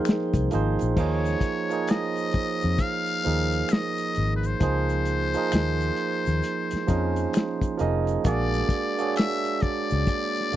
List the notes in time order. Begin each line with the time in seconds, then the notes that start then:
Already playing: F3 A#3 D#4 G#4 A#4 C5 G5
0.05 finger snap, snare, closed hi-hat, shaker
0.34 C2, kick, closed hi-hat, shaker
0.51 G#1 F3 A#3 D#4 G#4, closed hi-hat, shaker
0.55 C5
0.79 A#1, closed hi-hat, shaker
0.97 D#2 F3 A#3 D#4 G#4 C#5, kick, crash, shaker
1.01 C#5
1.25 snare, closed hi-hat, shaker
1.41 kick, closed hi-hat, shaker
1.70 F3 A#3 D#4 G#4, closed hi-hat, shaker
1.74 C5
1.87 D#5, finger snap, snare, closed hi-hat, shaker
2.16 closed hi-hat, shaker
2.31 muted fingered electric bass stroke, kick, closed hi-hat
2.62 F2, closed hi-hat, shaker
2.78 F5, kick, closed hi-hat, shaker
3.06 closed hi-hat, shaker
3.23 D#2 F3 A#3 D#4 G#4, closed hi-hat, shaker
3.27 A#4
3.52 closed hi-hat, shaker
3.69 D#5, finger snap, closed hi-hat, shaker
3.73 snare
3.97 closed hi-hat, shaker
4.14 G#1, closed hi-hat, shaker
4.36 B4
4.43 C5, closed hi-hat, shaker
4.60 C#2 F3 A#3 D#4 G#4 C5, kick, closed hi-hat, shaker
4.89 closed hi-hat, shaker
5.05 closed hi-hat, shaker
5.34 F3 A#3 D#4 G#4 A#4, closed hi-hat, shaker
5.52 D#2, finger snap, snare, closed hi-hat, shaker
5.80 closed hi-hat, shaker
5.96 closed hi-hat
6.26 D#2, closed hi-hat, shaker
6.43 closed hi-hat, shaker
6.71 muted fingered electric bass stroke, closed hi-hat, shaker
6.76 snare
6.87 F2 F3 A#3 C#4 D#4 G#4, kick, closed hi-hat, shaker
7.16 closed hi-hat, shaker
7.33 finger snap, snare, closed hi-hat, shaker
7.61 kick, closed hi-hat, shaker
7.77 F1 F3 A#3 D#4 G#4, closed hi-hat, shaker
7.82 D#5
8.07 closed hi-hat, shaker
8.24 A#1 G#3 A#3 D4 F#4 G#4 D5, kick, closed hi-hat, shaker
8.54 closed hi-hat, shaker
8.58 snare
8.69 kick, closed hi-hat, shaker
8.98 A#3 D4 F#4 G#4 C#5, closed hi-hat, shaker
9.08 D5
9.16 E5, finger snap, snare, closed hi-hat, shaker
9.44 closed hi-hat, shaker
9.60 D5, muted fingered electric bass stroke, kick, closed hi-hat
9.90 C#2, closed hi-hat, shaker
10.07 kick, closed hi-hat, shaker
10.35 closed hi-hat, shaker
10.40 snare
10.53 A#3, closed hi-hat, shaker